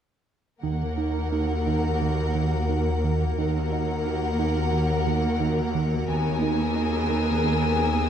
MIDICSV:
0, 0, Header, 1, 10, 480
1, 0, Start_track
1, 0, Key_signature, -6, "minor"
1, 0, Tempo, 688863
1, 437, Time_signature, 4, 2, 24, 8
1, 1875, Tempo, 678733
1, 5696, End_track
2, 0, Start_track
2, 0, Title_t, "Violin section"
2, 0, Program_c, 0, 48
2, 4272, Note_on_c, 0, 87, 44
2, 4273, Note_on_c, 0, 88, 44
2, 5696, Note_off_c, 0, 87, 0
2, 5696, Note_off_c, 0, 88, 0
2, 5696, End_track
3, 0, Start_track
3, 0, Title_t, "Violin section"
3, 0, Program_c, 1, 48
3, 437, Note_on_c, 1, 78, 39
3, 2329, Note_off_c, 1, 78, 0
3, 2358, Note_on_c, 1, 78, 44
3, 4245, Note_off_c, 1, 78, 0
3, 4275, Note_on_c, 1, 80, 53
3, 5696, Note_off_c, 1, 80, 0
3, 5696, End_track
4, 0, Start_track
4, 0, Title_t, "Ambient pad"
4, 0, Program_c, 2, 92
4, 440, Note_on_c, 2, 82, 46
4, 442, Note_on_c, 2, 66, 45
4, 446, Note_on_c, 2, 70, 41
4, 2331, Note_off_c, 2, 82, 0
4, 2332, Note_off_c, 2, 66, 0
4, 2334, Note_off_c, 2, 70, 0
4, 2353, Note_on_c, 2, 82, 47
4, 2354, Note_on_c, 2, 66, 49
4, 2357, Note_on_c, 2, 70, 49
4, 4243, Note_off_c, 2, 66, 0
4, 4243, Note_off_c, 2, 82, 0
4, 4245, Note_off_c, 2, 70, 0
4, 4279, Note_on_c, 2, 59, 49
4, 4282, Note_on_c, 2, 82, 48
4, 4283, Note_on_c, 2, 68, 49
4, 5696, Note_off_c, 2, 59, 0
4, 5696, Note_off_c, 2, 68, 0
4, 5696, Note_off_c, 2, 82, 0
4, 5696, End_track
5, 0, Start_track
5, 0, Title_t, "Violin section"
5, 0, Program_c, 3, 48
5, 438, Note_on_c, 3, 70, 34
5, 2330, Note_off_c, 3, 70, 0
5, 2362, Note_on_c, 3, 70, 40
5, 4247, Note_off_c, 3, 70, 0
5, 4277, Note_on_c, 3, 70, 45
5, 5696, Note_off_c, 3, 70, 0
5, 5696, End_track
6, 0, Start_track
6, 0, Title_t, "Viola section"
6, 0, Program_c, 4, 48
6, 442, Note_on_c, 4, 58, 35
6, 2332, Note_off_c, 4, 58, 0
6, 2359, Note_on_c, 4, 58, 43
6, 4246, Note_off_c, 4, 58, 0
6, 4274, Note_on_c, 4, 59, 47
6, 5696, Note_off_c, 4, 59, 0
6, 5696, End_track
7, 0, Start_track
7, 0, Title_t, "Analog synth bass"
7, 0, Program_c, 5, 38
7, 440, Note_on_c, 5, 51, 62
7, 584, Note_off_c, 5, 51, 0
7, 680, Note_on_c, 5, 63, 42
7, 824, Note_off_c, 5, 63, 0
7, 923, Note_on_c, 5, 63, 45
7, 1066, Note_off_c, 5, 63, 0
7, 1163, Note_on_c, 5, 51, 66
7, 1305, Note_off_c, 5, 51, 0
7, 1403, Note_on_c, 5, 51, 46
7, 1545, Note_off_c, 5, 51, 0
7, 1636, Note_on_c, 5, 51, 50
7, 1779, Note_off_c, 5, 51, 0
7, 1877, Note_on_c, 5, 51, 70
7, 2021, Note_off_c, 5, 51, 0
7, 2123, Note_on_c, 5, 51, 49
7, 2266, Note_off_c, 5, 51, 0
7, 2364, Note_on_c, 5, 51, 72
7, 2507, Note_off_c, 5, 51, 0
7, 2605, Note_on_c, 5, 63, 48
7, 2747, Note_off_c, 5, 63, 0
7, 2840, Note_on_c, 5, 63, 46
7, 2984, Note_off_c, 5, 63, 0
7, 3077, Note_on_c, 5, 51, 69
7, 3221, Note_off_c, 5, 51, 0
7, 3316, Note_on_c, 5, 51, 50
7, 3460, Note_off_c, 5, 51, 0
7, 3555, Note_on_c, 5, 51, 53
7, 3699, Note_off_c, 5, 51, 0
7, 3793, Note_on_c, 5, 51, 72
7, 3937, Note_off_c, 5, 51, 0
7, 4036, Note_on_c, 5, 51, 51
7, 4179, Note_off_c, 5, 51, 0
7, 4277, Note_on_c, 5, 51, 73
7, 4419, Note_off_c, 5, 51, 0
7, 4510, Note_on_c, 5, 63, 50
7, 4653, Note_off_c, 5, 63, 0
7, 4748, Note_on_c, 5, 63, 47
7, 4892, Note_off_c, 5, 63, 0
7, 4990, Note_on_c, 5, 51, 73
7, 5134, Note_off_c, 5, 51, 0
7, 5232, Note_on_c, 5, 51, 51
7, 5377, Note_off_c, 5, 51, 0
7, 5478, Note_on_c, 5, 51, 52
7, 5623, Note_off_c, 5, 51, 0
7, 5696, End_track
8, 0, Start_track
8, 0, Title_t, "Cello section"
8, 0, Program_c, 6, 48
8, 435, Note_on_c, 6, 39, 37
8, 2328, Note_off_c, 6, 39, 0
8, 2359, Note_on_c, 6, 39, 44
8, 4246, Note_off_c, 6, 39, 0
8, 4271, Note_on_c, 6, 39, 54
8, 5696, Note_off_c, 6, 39, 0
8, 5696, End_track
9, 0, Start_track
9, 0, Title_t, "Double bass section"
9, 0, Program_c, 7, 48
9, 436, Note_on_c, 7, 39, 42
9, 2329, Note_off_c, 7, 39, 0
9, 2358, Note_on_c, 7, 39, 50
9, 4246, Note_off_c, 7, 39, 0
9, 4272, Note_on_c, 7, 39, 57
9, 5696, Note_off_c, 7, 39, 0
9, 5696, End_track
10, 0, Start_track
10, 0, Title_t, "Sub bass"
10, 0, Program_c, 8, 38
10, 441, Note_on_c, 8, 39, 58
10, 2332, Note_off_c, 8, 39, 0
10, 2357, Note_on_c, 8, 39, 59
10, 4245, Note_off_c, 8, 39, 0
10, 4274, Note_on_c, 8, 39, 70
10, 5696, Note_off_c, 8, 39, 0
10, 5696, End_track
0, 0, End_of_file